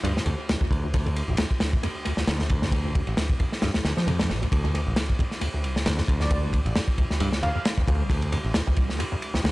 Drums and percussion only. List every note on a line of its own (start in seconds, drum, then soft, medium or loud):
0.04 ride medium
0.17 snare medium
0.26 ride medium
0.49 snare loud
0.49 ride medium
0.61 kick medium
0.71 kick medium
0.71 ride medium
0.94 kick loud
0.94 ride medium
1.06 ride soft
1.16 ride medium
1.37 snare loud
1.37 ride medium
1.51 kick medium
1.60 snare loud
1.60 ride medium
1.73 kick medium
1.83 ride medium
2.05 ride medium
2.17 snare medium
2.28 snare loud
2.28 ride medium
2.39 snare soft
2.49 kick loud
2.49 ride medium
2.62 snare soft
2.72 kick loud
2.72 ride medium
2.95 kick medium
2.95 ride medium
3.07 ride soft
3.17 snare loud
3.17 ride medium
3.30 kick medium
3.40 kick medium
3.40 ride medium
3.52 snare soft
3.62 snare loud
3.62 ride medium
3.74 snare medium
3.74 ride medium
3.85 snare medium
3.85 ride medium
3.97 snare soft
4.08 ride medium
4.19 snare medium
4.19 ride medium
4.30 snare soft
4.43 ride medium
4.52 kick loud
4.52 ride medium
4.65 ride soft
4.75 ride medium
4.96 snare loud
4.96 ride medium
5.10 kick medium
5.19 kick medium
5.19 ride medium
5.31 snare soft
5.41 ride medium
5.64 ride medium
5.76 snare soft
5.86 snare loud
5.86 ride medium
5.98 snare medium
6.08 kick loud
6.08 ride medium
6.20 snare soft
6.31 kick loud
6.31 ride medium
6.53 kick medium
6.53 ride medium
6.66 ride soft
6.76 snare loud
6.76 ride medium
6.88 kick loud
6.98 kick medium
6.98 ride medium
7.10 snare soft
7.20 ride medium
7.32 snare medium
7.43 ride medium
7.65 snare loud
7.65 ride medium
7.78 kick medium
7.88 kick medium
7.88 ride medium
8.10 kick loud
8.10 ride medium
8.22 ride soft
8.32 ride medium
8.54 snare loud
8.54 ride medium
8.68 kick medium
8.76 kick medium
8.76 ride medium
8.89 snare soft
9.00 ride medium
9.22 ride medium
9.35 snare medium
9.45 snare loud
9.45 ride medium